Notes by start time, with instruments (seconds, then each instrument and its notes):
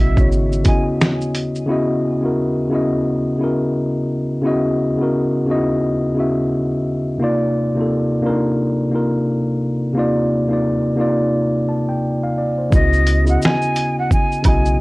Already playing: sub bass B1, tine electric piano C#3 B3 E4 F#4 D#5 E5, flute E5
0.15 tine electric piano C#3 B3 E4, kick, shaker
0.19 tine electric piano F#4 C#5
0.31 sub bass G#1, shaker
0.52 shaker
0.63 tine electric piano C#3 B3 E4 F#4, kick, closed hi-hat, shaker
0.67 tine electric piano D#5, flute G#5
1.01 finger snap, snare, shaker
1.21 shaker
1.35 closed hi-hat, shaker
1.55 shaker
1.66 tine electric piano C#3 B3 E4
1.71 tine electric piano F#4 D#5
2.20 tine electric piano C#3 B3 E4 F#4
2.26 tine electric piano A#4
2.70 tine electric piano C#3 B3 E4
2.74 tine electric piano F#4 D#5
3.38 tine electric piano C#3 B3 E4
3.42 tine electric piano F#4 A#4
4.41 tine electric piano C#3 B3 E4
4.46 tine electric piano F#4 D#5
4.97 tine electric piano C#3 B3 E4
5.02 tine electric piano F#4 A#4
5.46 tine electric piano C#3 B3 D#4 F#4
5.51 tine electric piano E4 D#5
6.14 tine electric piano C#3 B3 E4
6.18 tine electric piano F#4 E5
7.18 tine electric piano C3 A#3 D#4
7.22 tine electric piano F4 D5
7.75 tine electric piano C3 A#3 D#4 F4
7.80 tine electric piano A4
8.21 tine electric piano C3 A#3 D4
8.25 tine electric piano F4 A#4
8.30 tine electric piano D#4
8.90 tine electric piano C3 A#3 D#4
8.94 tine electric piano F4 A#4
9.93 tine electric piano C3 A#3 D#4
9.98 tine electric piano F4 D5
10.48 tine electric piano C3 A#3 D#4
10.52 tine electric piano F4 D5
10.96 tine electric piano C3 A#3 D#4
11.00 tine electric piano F4 D5
11.69 tine electric piano A5
11.89 tine electric piano G5
12.23 tine electric piano F5
12.38 tine electric piano D5
12.58 tine electric piano C5
12.71 sub bass C#2, tine electric piano C#3 B3 E4, flute D#5, kick, shaker
12.75 tine electric piano F#4 D#5
12.93 shaker
13.07 closed hi-hat, shaker
13.24 tine electric piano C#3 B3 E4 F#4, shaker
13.29 tine electric piano D#5, flute F#5
13.42 flute G#5, finger snap, snare, shaker
13.62 shaker
13.76 closed hi-hat, shaker
13.99 flute F#5
14.11 flute G#5, kick, shaker
14.32 shaker
14.43 sub bass B1, tine electric piano C#3 B3 E4, kick, closed hi-hat, high woodblock, shaker
14.47 tine electric piano F#4 D#5, flute G#5
14.66 shaker